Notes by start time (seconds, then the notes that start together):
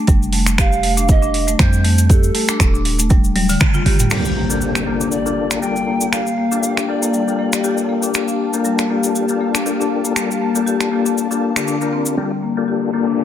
0.07 F1 G3, kick, closed hi-hat, cabasa
0.23 cabasa
0.33 A3, open hi-hat
0.46 finger snap, closed hi-hat, cabasa
0.58 G4 F5, finger snap, kick, closed hi-hat, cabasa
0.72 cabasa
0.83 A3, open hi-hat
0.97 D4, closed hi-hat, cabasa
1.09 D#5, kick, closed hi-hat, cabasa
1.22 D4, cabasa
1.34 open hi-hat
1.47 A3, closed hi-hat, cabasa
1.59 F2 G3 C5, finger snap, kick, closed hi-hat, cabasa
1.73 cabasa
1.84 A3, open hi-hat
1.98 closed hi-hat, cabasa
2.09 G4 A4, kick, closed hi-hat, cabasa
2.23 cabasa
2.35 A3, open hi-hat
2.48 D4, finger snap, closed hi-hat, cabasa
2.60 D#1, finger snap, kick, closed hi-hat, cabasa
2.74 D4, cabasa
2.85 open hi-hat
2.99 A3, closed hi-hat, cabasa
3.10 G3, kick, closed hi-hat, cabasa
3.24 cabasa
3.35 G3, open hi-hat, high tom
3.49 D3, open hi-hat, cabasa
3.60 finger snap, kick, mid tom, cabasa
3.74 F4, mid tom, cabasa
3.86 G1 G4, open hi-hat
3.99 G3, closed hi-hat, mid tom, cabasa
4.10 G3 A#3 D4 F4 G4 A4 C5 F5 G5, finger snap, crash, impact, cabasa
4.25 cabasa
4.37 A#3
4.50 A#3 D4 F4 G4 A4, cabasa
4.61 G4, cabasa
4.75 finger snap, cabasa
4.86 A#3 D4 F4 G4 A4
5.01 D4, cabasa
5.11 D5, cabasa
5.26 A#3 D4 F4 G4 A4, cabasa
5.51 A#3, finger snap, cabasa
5.61 G3 A#3 D4 F4 G4 A4 G5, cabasa
5.76 cabasa
5.87 A#3
6.01 cabasa
6.12 A#3 D4 F4 G4 A4 F5, finger snap, cabasa
6.27 cabasa
6.38 A#3
6.51 A#3 D4 F4 G4 A4, cabasa
6.63 cabasa
6.77 D4, finger snap, cabasa
6.88 A#3 D4 F4 G4 A4 D5
7.02 A#3, cabasa
7.13 G3, cabasa
7.27 A#3 D4 F4 G4 A4, cabasa
7.39 A#3
7.53 finger snap, cabasa
7.64 A#3 D4 F4 G4 A4, cabasa
7.78 cabasa
7.89 A#3
8.03 D4, cabasa
8.14 A#3 D4 F4 G4 A4 A5, finger snap, cabasa
8.28 D4, cabasa
8.53 A#3 D4 F4 G4 A4, cabasa
8.65 G3, cabasa
8.79 finger snap, cabasa
8.90 A#3 D4 F4 G4 A4
9.03 cabasa
9.15 G4, cabasa
9.29 A#3 D4 F4 G4 A4, cabasa
9.41 A#3
9.54 D4, finger snap, cabasa
9.66 A#3 D4 F4 G4 A4, cabasa
9.80 D4, cabasa
10.05 A#3, cabasa
10.16 G3 A#3 D4 F4 G4 A4, finger snap, cabasa
10.31 cabasa
10.42 A#3
10.55 A#3 D4 F4 G4 A4, cabasa
10.66 G4, cabasa
10.81 finger snap, cabasa
10.91 A#3 D4 F4 G4 A4
11.05 D4, cabasa
11.18 cabasa
11.31 A#3 D4 F4 G4 A4, cabasa
11.56 D3 A#3 D4 F4 G4 A4, finger snap, cabasa
11.68 D4, cabasa
11.81 A#3 D4 F4 G4 A#4, cabasa
11.93 C4
12.05 cabasa
12.17 G1 G3 A#3 D4 F4 G4 A4 F5 A5, riser
12.43 A#3
12.57 A#3 D4 F4 G4 A4
12.68 G4
12.93 A#3 D4 F4 G4 A4
13.07 D4